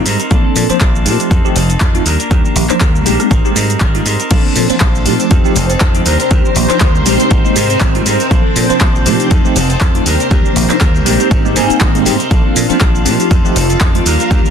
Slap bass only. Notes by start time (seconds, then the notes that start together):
0.06 G#2
0.31 A#1
0.56 A#2
0.70 muted slap bass stroke
0.81 A#1
1.06 A#2
1.31 F2
1.56 F1
1.81 F2
2.06 D#2
2.31 D#2
2.56 A#1
2.70 muted slap bass stroke
2.81 D#2
3.06 A#1
3.31 G#1
3.56 G#2
3.81 G#1
4.05 G#2
4.31 A#1
4.56 A#2
4.70 muted slap bass stroke
4.81 A#1
5.06 A#2
5.31 F2
5.56 F1
5.81 F2
6.06 D#2
6.31 D#2
6.56 A#1
6.81 D#2
7.06 A#1
7.31 G#1
7.56 G#2
7.81 G#1
8.06 G#2
8.31 A#1
8.56 A#2
8.70 muted slap bass stroke
8.81 A#1
9.06 A#2
9.31 F2
9.56 F1
9.81 F2
10.06 D#2
10.31 D#2
10.56 A#1
10.81 D#2
11.06 A#1
11.31 G#1
11.56 G#2
11.70 muted slap bass stroke
11.81 G#1
12.06 G#2
12.31 A#1
12.56 A#2
12.70 muted slap bass stroke
12.81 A#1
13.06 A#2
13.31 F2
13.56 F1
13.81 F2
14.06 D#2
14.31 D#2